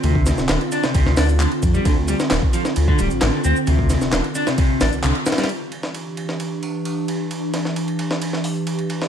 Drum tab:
RD |x---x---x-x-x---x-------x-x-x---|x---x---x---x---x---x---x-------|x---x---x-x-x---x-------x-x-xxxx|x---x---x---x---x---x---x---x---|
HH |--------------------o-----------|--------------------------------|--------------------o-----------|--------------------------------|
SH |x---x-x-x---x-x-x---x-x-x---x-x-|x---x-x-x---x-x-x---x-x-x---x-x-|x---x-x-x---x-x-x---x-x-x---x-x-|----x-------x---x---x-x-x---x-x-|
CP |--------x---------------x-------|--------x---------------x-------|--------x---------------x-------|--------------------------------|
SD |----o-o-o-----o---o-o-----------|------o-o-----o---------o-------|----o-o-o-----o-----o-------oooo|------o-------o-----------------|
BD |--o-------------o-----------o---|o---------o-------o-------------|--o-------------o---------------|--------------------------------|

RD |x---x---x-x-x---x-------x-x-x---|
HH |--------------------o-----------|
SH |x---x-x-----x-x-x---x-x-x---x-x-|
CP |--------------------------------|
SD |----o-o-------o---o-----------o-|
BD |--------------------------------|